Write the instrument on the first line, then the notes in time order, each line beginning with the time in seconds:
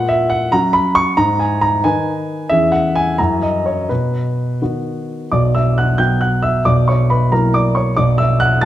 grand piano
Already playing: A#2 F#5
0.09 E5
0.30 F#5
0.52 F#3 C#4 F#4 A#5
0.73 B5
0.95 C#6
1.17 G#2 A#5
1.39 G#5
1.61 A#5
1.84 D#3 D#4 B4 G#5
2.49 E2 E3 C#4 G#4 E5
2.72 F#5
2.95 G#5
3.18 F#2 E3 C#4 F#4 A#5
3.43 D#5
3.66 C#5
3.89 B2 B4
4.62 D#3 B3 F#4
5.32 B1 B2 D5 D6
5.55 E5 E6
5.78 F#5 F#6
5.98 F#3 B3 F#4 G5 G6
6.21 F#5 F#6
6.43 E5 E6
6.65 B1 B2 D5 D6
6.88 C#5 C#6
7.10 B4 B5
7.32 F#3 A#3 E4 A#4 A#5
7.54 D5 D6
7.75 C#5 C#6
7.97 B1 B2 D5 D6
8.18 E5 E6
8.40 F#5 F#6
8.61 A6